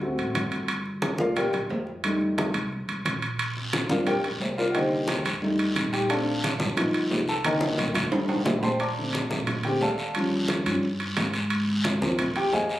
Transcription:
Already playing: D2
0.01 A3 C4 F#4, high conga
0.18 A1, high conga, high timbale
0.35 G1, high conga, high timbale
0.52 high timbale
0.68 high conga, high timbale
0.86 high conga
1.02 high conga, high timbale
1.18 D2 A3 A#3 F4 A#4 D5 F5, high conga
1.36 G4 A#4 D5 G5, high conga, low conga, high timbale
1.53 high conga, low conga, high timbale
1.70 F2, high conga, low timbale
1.87 high conga
2.04 G3 A3 D#4, high conga, high timbale
2.21 high conga
2.38 high conga, high timbale
2.54 C2, high conga, high timbale
2.72 high conga
2.88 C2, high conga, high timbale
3.05 A#1, high conga, high timbale
3.22 high timbale
3.39 high conga, high timbale, long guiro
3.57 high conga
3.73 high conga, high timbale, short guiro
3.90 F2 G3 C4 D4 F4 A#4 D5 F5, high conga, short guiro
4.07 G4 A#4 D5 G5, high conga, low conga, high timbale, long guiro
4.24 high conga, low conga, high timbale
4.40 C2, high conga, low timbale, short guiro
4.58 F4 A#4 D5 F5, high conga, short guiro
4.70 D#3 F#5
4.74 D3 A#3 G4 C5 D#5 G5, high conga, high timbale, long guiro
4.91 high conga
5.08 high conga, high timbale, short guiro
5.25 F2, high conga, high timbale, short guiro
5.41 G3 A3 D#4, high conga, long guiro
5.58 high conga, high timbale
5.75 A#1, high conga, high timbale, short guiro
5.93 G4 G5, high timbale, short guiro
6.09 A3 C4 D4 A4 D5 F5 A5, high conga, high timbale, long guiro
6.27 high conga
6.43 high conga, high timbale, short guiro
6.60 G1, high conga, short guiro
6.77 F3 B3 D#4, high conga, low conga, high timbale, long guiro
6.94 high conga, high timbale
7.10 C2, high conga, low timbale, short guiro
7.28 A4 A5, high conga, short guiro
7.45 D3 D#3 A#3 A#4 D#5 G5 A#5, high conga, high timbale, long guiro
7.61 high conga
7.78 low conga, high timbale, short guiro
7.94 F2, low conga, high timbale, short guiro
8.12 D#3 G3 A3 D4, high timbale, long guiro
8.28 C2, low conga, high timbale
8.45 A#1, low conga, low timbale, short guiro
8.59 B5, low conga, low timbale, short guiro
8.63 C5 G5 A5 C6
8.80 D5 A5 A#5 D6, high conga, high timbale, long guiro
8.97 D3 A3 C4, high conga
9.13 high conga, high timbale, short guiro
9.31 A#2, high conga, short guiro
9.47 high conga, low conga, high timbale, long guiro
9.63 D3 A3 C4 G4 G5, high conga, high timbale
9.81 D#2 A4 D5 F5 A5, high conga, low timbale, short guiro
9.98 high conga, short guiro
10.15 F3 G3 C#4, high conga, high timbale, long guiro
10.32 high conga
10.48 high conga, high timbale, short guiro
10.66 G2 F3 G3 C#4, high conga, high timbale, short guiro
10.83 high conga, long guiro
11.00 high conga, high timbale
11.17 G#2, high conga, high timbale, low timbale, short guiro
11.34 high timbale, short guiro
11.50 high conga, high timbale, long guiro
11.68 high conga
11.84 high conga, high timbale, short guiro
12.01 D#2 F3 A#3 C4, high conga, short guiro
12.19 high conga, low conga, high timbale, long guiro
12.36 G4 G5, high conga, high timbale
12.52 F2 G#4 D#5 F5 G#5, high conga, low timbale, short guiro
12.69 high conga, short guiro

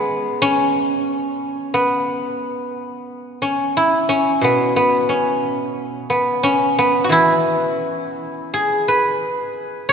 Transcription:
Already playing: G#3 B3 C#4
0.42 C#4
1.74 B3
3.42 C#4
3.77 E4
4.09 C#4
4.41 B2 B3
4.76 B3
5.09 C#4
6.10 B3
6.43 C#4
6.79 B3
7.04 F#4
7.09 E3 E4
8.54 G#4
8.88 B4
9.89 C#5

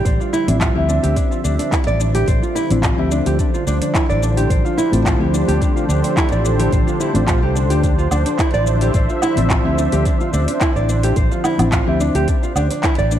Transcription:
Already playing: D3 G3 D4 G4 E5
0.02 A1 F3 C5, kick, open hi-hat
0.06 shaker
0.15 C5
0.20 F4, shaker
0.33 E4, shaker
0.47 A1 F3 C4 D4 E4, open hi-hat, shaker
0.61 F4, kick, clap, open hi-hat, shaker
0.74 D2 F3 C4 G4
0.78 E5
0.89 D4, shaker
1.03 D2 G4, open hi-hat, shaker
1.16 D4, kick, open hi-hat, shaker
1.31 F4, shaker
1.44 D2 D4, shaker
1.59 D4, open hi-hat, shaker
1.72 E4, kick, clap, open hi-hat, shaker
1.87 A1 D5, shaker
2.00 D4, shaker
2.15 G4, open hi-hat, shaker
2.28 A1 C5, kick, open hi-hat, shaker
2.42 F4, shaker
2.55 E4, shaker
2.70 A1 F3 C4 D4 E4, open hi-hat, shaker
2.83 F4, kick, clap, open hi-hat, shaker
2.97 D2 F3 C4 G4 E5
3.11 D4, shaker
3.26 D2 G4, open hi-hat, shaker
3.39 D4, kick, open hi-hat, shaker
3.54 F4, shaker
3.67 D2 D4, shaker
3.82 D4, open hi-hat, shaker
3.95 E4, kick, clap, open hi-hat, shaker
4.09 A1 D5, shaker
4.22 D4, shaker
4.37 G4, open hi-hat, shaker
4.50 A1 C5, kick, open hi-hat, shaker
4.55 G4
4.65 F4, shaker
4.70 A4
4.78 E4, shaker
4.92 A1 A3 C4 D4 F4, open hi-hat, shaker
5.05 F4, kick, clap, open hi-hat, shaker
5.18 D2 A3 C4 G4
5.22 F3
5.33 D4, shaker
5.48 D2 G4, open hi-hat, shaker
5.61 D4, kick, open hi-hat, shaker
5.76 F4, shaker
5.89 D2 D4, shaker
6.04 D4, open hi-hat, shaker
6.17 E4, kick, clap, open hi-hat, shaker
6.32 A1 D5, shaker
6.45 D4, shaker
6.59 G4, open hi-hat, shaker
6.72 A1 C5, kick, open hi-hat, shaker
6.87 F4, shaker
7.00 E4, shaker
7.14 A1 A3 C4 D4 F4, open hi-hat, shaker
7.28 F4, kick, clap, open hi-hat, shaker
7.42 C2 G4
7.55 D4, shaker
7.70 D2 G4, open hi-hat, shaker
7.83 D4, kick, open hi-hat, shaker
7.98 F4, shaker
8.11 D2 D4, low woodblock, shaker
8.24 D4 E5, open hi-hat, shaker
8.39 E4, kick, clap, open hi-hat, shaker
8.54 A1 D5, shaker
8.67 D4, shaker
8.81 G4, open hi-hat, shaker
8.94 A1 C5, kick, open hi-hat, shaker
9.09 F4, shaker
9.22 E4, low woodblock, shaker
9.36 A1 F3 C4 D4 E4, open hi-hat, shaker
9.50 F4, kick, clap, open hi-hat, shaker
9.63 D2 F3 C4 G4 E5
9.78 D4, shaker
9.92 D2 G4, open hi-hat, shaker
10.05 D4, kick, open hi-hat, shaker
10.21 F4, shaker
10.33 D2 D4, shaker
10.48 D4, open hi-hat, shaker
10.61 E4, kick, clap, open hi-hat, shaker
10.76 A1 D5, shaker
10.89 D4, shaker
11.03 G4, open hi-hat, shaker
11.16 A1 C5, kick, open hi-hat, shaker
11.31 F4, shaker
11.44 E4, low woodblock, shaker
11.58 A1 F3 C4 D4 E4, open hi-hat, low woodblock, shaker
11.72 F4, kick, clap, open hi-hat, shaker
11.86 D2 F3 C4 G4 E5
12.00 D4, shaker
12.15 D2 G4, open hi-hat, shaker
12.28 D4, kick, open hi-hat, shaker
12.43 F4, shaker
12.56 D2 D4, low woodblock, shaker
12.71 D4, open hi-hat, shaker
12.83 E4, kick, clap, open hi-hat, shaker
12.98 A1 D5, shaker
13.11 D4, shaker

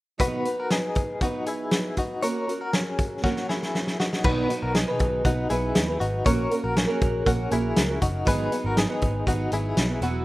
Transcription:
0.18 B2 D#3 F#3 B3 D#4 F#4 B4, kick, closed hi-hat
0.45 F#3 B3 D#4 B4, closed hi-hat
0.60 F#4 A#4
0.70 D#4 G#4, snare, closed hi-hat
0.95 kick, closed hi-hat
1.20 F#3 B3 D#4 F#4, kick, closed hi-hat
1.25 B4
1.46 E4 G#4, closed hi-hat
1.71 snare, closed hi-hat
1.97 D#4 F#4, kick, closed hi-hat
2.22 A#3 C#4 F#4 A#4 C#5, closed hi-hat
2.47 C#4 F#4 A#4, closed hi-hat
2.61 F#4 A#4
2.73 C#4 G#4, snare, closed hi-hat
2.98 kick, closed hi-hat
3.22 A#3 C#4 F#4 A#4, kick, snare
3.36 snare
3.49 E4 G#4, snare
3.63 snare
3.75 snare
3.87 snare
4.00 D#4 F#4, snare
4.13 snare
4.23 B1 B2 D#3 F#3 B3 D#4 F#4 B4, kick, crash
4.49 F#3 B3 D#4 B4, closed hi-hat
4.63 B1 F#4 A#4
4.75 D#4 G#4, snare, closed hi-hat
4.88 B2 D#3 F#3 B3 D#4 B4
4.99 B1, kick, closed hi-hat
5.25 B1 F#3 B3 D#4 F#4 B4, kick, closed hi-hat
5.49 B1 F#3 B3 D#4 E4 G#4 B4, closed hi-hat
5.75 D#2, snare, closed hi-hat
5.88 F#3 B3 D#4 B4
6.00 G#1 D#4 F#4, closed hi-hat
6.25 A#1 A#3 C#4 F#4 A#4 C#5, kick, closed hi-hat
6.51 A#3 C#4 F#4 A#4, closed hi-hat
6.64 A#1 F#4 A#4
6.77 C#4 G#4, snare, closed hi-hat
6.87 A#3 C#4 F#4 A#4
7.01 A#1, kick, closed hi-hat
7.25 A#1 A#3 C#4 F#4 A#4, kick, closed hi-hat
7.51 A#1 A#3 C#4 E4 F#4 G#4 A#4, closed hi-hat
7.76 C#2, snare, closed hi-hat
7.89 C#4 F#4 A#4
8.02 F#1 D#4 F#4, kick, closed hi-hat
8.25 G#1 G#2 D#3 F#3 B3 D#4 G#4 B4, kick, closed hi-hat
8.51 F#3 B3 D#4 G#4, closed hi-hat
8.64 G#1 F#4 A#4
8.77 D#4 G#4, snare, closed hi-hat
8.89 G#2 D#3 F#3 B3 D#4 G#4
9.02 G#1, kick, closed hi-hat
9.26 G#1 F#3 B3 D#4 F#4 G#4, kick, closed hi-hat
9.51 G#1 F#3 B3 D#4 E4 G#4, closed hi-hat
9.77 B1, snare, closed hi-hat
9.88 F#3 B3 D#4 G#4
10.01 E1 E3 F#3 B3 F#4 G#4, closed hi-hat

